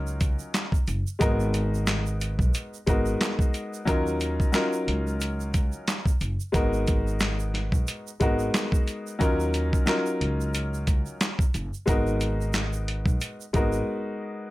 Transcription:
Already playing: upright bass C#2, upright piano F#3 C#4 D#4 F4 A#4
0.07 shaker
0.21 kick, closed hi-hat, shaker
0.39 shaker
0.54 snare, clap, closed hi-hat, shaker
0.72 kick, shaker
0.88 upright bass F#1, closed hi-hat, shaker
1.07 shaker
1.19 upright bass G#1, upright piano G#3 B3 D#4 F#4 A#4, kick, closed hi-hat, shaker
1.40 shaker
1.54 closed hi-hat, shaker
1.74 shaker
1.87 snare, clap, closed hi-hat, shaker
2.06 shaker
2.21 closed hi-hat, shaker
2.39 upright bass B1, kick, shaker
2.54 closed hi-hat, shaker
2.74 shaker
2.86 upright bass G#1, upright piano G#3 B3 D#4 F#4 A#4, kick, closed hi-hat, shaker
3.06 shaker
3.21 snare, clap, closed hi-hat, shaker
3.39 kick, shaker
3.54 closed hi-hat, shaker
3.74 shaker
3.85 upright bass D#2, upright piano F#3 C#4 D#4 F4 A#4, kick, closed hi-hat, shaker
4.07 shaker
4.21 closed hi-hat, shaker
4.40 kick, shaker
4.52 upright piano F#3 C#4 D#4 F4 A#4, snare, clap, closed hi-hat, shaker
4.73 shaker
4.88 upright bass C#2, closed hi-hat
5.07 shaker
5.21 closed hi-hat, shaker
5.40 shaker
5.54 kick, closed hi-hat, shaker
5.72 shaker
5.88 snare, clap, closed hi-hat, shaker
6.06 kick, shaker
6.21 upright bass F#1, closed hi-hat, shaker
6.40 shaker
6.52 upright bass G#1, upright piano G#3 B3 D#4 F#4 A#4, kick, closed hi-hat, shaker
6.73 shaker
6.87 kick, closed hi-hat, shaker
7.07 shaker
7.20 snare, clap, closed hi-hat, shaker
7.39 shaker
7.54 snare, closed hi-hat
7.72 upright bass B1, kick, shaker
7.87 closed hi-hat, shaker
8.07 shaker
8.20 upright bass G#1, upright piano G#3 B3 D#4 F#4 A#4, kick, closed hi-hat, shaker
8.39 shaker
8.54 snare, clap, closed hi-hat, shaker
8.72 kick, shaker
8.88 closed hi-hat, shaker
9.07 shaker
9.19 upright bass D#2, upright piano F#3 C#4 D#4 F4 A#4, kick, closed hi-hat, shaker
9.40 shaker
9.54 closed hi-hat, shaker
9.73 kick, shaker
9.86 upright piano F#3 C#4 D#4 F4 A#4, snare, clap, closed hi-hat, shaker
10.06 shaker
10.21 upright bass C#2, closed hi-hat
10.41 shaker
10.54 closed hi-hat, shaker
10.74 shaker
10.87 kick, closed hi-hat, shaker
11.06 shaker
11.21 snare, clap, closed hi-hat, shaker
11.39 kick, shaker
11.54 upright bass F#1, closed hi-hat, shaker
11.74 shaker
11.86 upright bass G#1, upright piano G#3 B3 D#4 F#4 A#4, kick, closed hi-hat, shaker
12.07 shaker
12.21 closed hi-hat, shaker
12.41 shaker
12.53 snare, clap, closed hi-hat, shaker
12.73 shaker
12.88 closed hi-hat
13.06 upright bass B1, kick, shaker
13.21 closed hi-hat, shaker
13.41 shaker
13.53 upright bass G#1, upright piano G#3 B3 D#4 F#4 A#4, kick, closed hi-hat, shaker
13.73 shaker

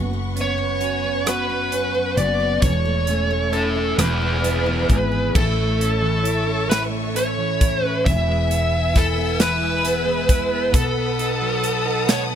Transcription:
Already playing: fretless electric bass F#1, clean electric guitar F#2 C#4, steel-string acoustic guitar B3 F#4, string section B4 F#5 C#6
0.13 steel-string acoustic guitar B3
0.36 clean electric guitar B3, steel-string acoustic guitar C#4, closed hi-hat
0.41 lead electric guitar C#5
0.58 steel-string acoustic guitar B3
0.80 clean electric guitar C#4, steel-string acoustic guitar F#4, closed hi-hat
1.04 steel-string acoustic guitar C#4
1.26 steel-string acoustic guitar B3 F#4, clean electric guitar F#4, lead electric guitar B4, cross-stick, closed hi-hat
1.72 steel-string acoustic guitar C#4, closed hi-hat
1.95 steel-string acoustic guitar B3
2.16 fretless electric bass F#1, clean electric guitar B3, steel-string acoustic guitar F#4, lead electric guitar D5, closed hi-hat
2.40 steel-string acoustic guitar C#4
2.61 fretless electric bass E1, steel-string acoustic guitar E3 A4, clean electric guitar E3, string section A4 E5, lead electric guitar C#5, kick, closed hi-hat
2.85 steel-string acoustic guitar A3
3.07 clean electric guitar A3, steel-string acoustic guitar C#4, closed hi-hat
3.31 steel-string acoustic guitar A3
3.52 clean electric guitar C#4, lead electric guitar A4, steel-string acoustic guitar A4, closed hi-hat
3.75 steel-string acoustic guitar C#4
3.98 fretless electric bass E1, steel-string acoustic guitar E3 G#4, clean electric guitar E3, string section G#4 B4 B5, lead electric guitar G#4 B4, cross-stick, closed hi-hat
4.22 steel-string acoustic guitar B3
4.44 clean electric guitar B3, steel-string acoustic guitar E4, closed hi-hat
4.66 steel-string acoustic guitar B3
4.88 fretless electric bass G#1, clean electric guitar G#3, steel-string acoustic guitar G#4, kick, closed hi-hat
5.12 steel-string acoustic guitar E4
5.34 fretless electric bass A1, clean electric guitar A2 E4, string section A4 C#5 E5 C#6, lead electric guitar A4, kick, crash
5.57 clean electric guitar A3
5.79 clean electric guitar C#4, closed hi-hat
6.02 clean electric guitar E3
6.24 clean electric guitar E4, closed hi-hat
6.47 clean electric guitar C#4
6.69 clean electric guitar A2 E4, lead electric guitar B4, snare, closed hi-hat
6.90 clean electric guitar A3
7.14 clean electric guitar C#4, lead electric guitar C#5, closed hi-hat
7.38 clean electric guitar E3
7.60 clean electric guitar E4, kick, closed hi-hat
7.82 clean electric guitar C#4, lead electric guitar B4
8.05 fretless electric bass E1, clean electric guitar E3 E4, string section B4 E5 G#5 E6, lead electric guitar E5, kick, closed hi-hat
8.28 clean electric guitar G#3
8.48 clean electric guitar B3, closed hi-hat
8.94 clean electric guitar E4, lead electric guitar A4, kick, snare, closed hi-hat
9.18 clean electric guitar B3
9.40 clean electric guitar E3 E4, lead electric guitar B4, snare, closed hi-hat
9.61 clean electric guitar G#3
9.85 clean electric guitar B3, closed hi-hat
10.05 clean electric guitar G#3
10.28 clean electric guitar E4, kick, closed hi-hat
10.51 clean electric guitar B3
10.72 fretless electric bass B1, clean electric guitar B2 A4, lead electric guitar A4, string section F#5 A5 D#6, kick, closed hi-hat
10.94 clean electric guitar B3
11.18 clean electric guitar D#4, closed hi-hat
11.42 clean electric guitar F#3
11.64 clean electric guitar A4, closed hi-hat
11.85 clean electric guitar D#4
12.08 clean electric guitar B2 A4, lead electric guitar C#5, snare, closed hi-hat
12.30 clean electric guitar B3

